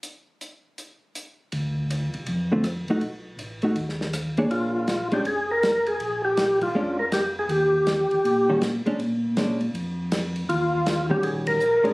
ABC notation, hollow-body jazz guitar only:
X:1
M:4/4
L:1/8
Q:"Swing" 1/4=161
K:Bbmix
V:1 name="Hollow-body jazz guitar"
z8 | z4 z [D,=A,CF] z [A,E_G] | z3 [=A,^D^F] z3 [B,=D_A_d]- | [B,DA_d]2 z [A,^C=D] z4 |
z4 [A,^CD] z3 | z4 z [E,G,_D^F] z [A,D=D] | z2 [A,^CD] z4 z | z3 [E,G,_D^F]3 z [A,D=D] |]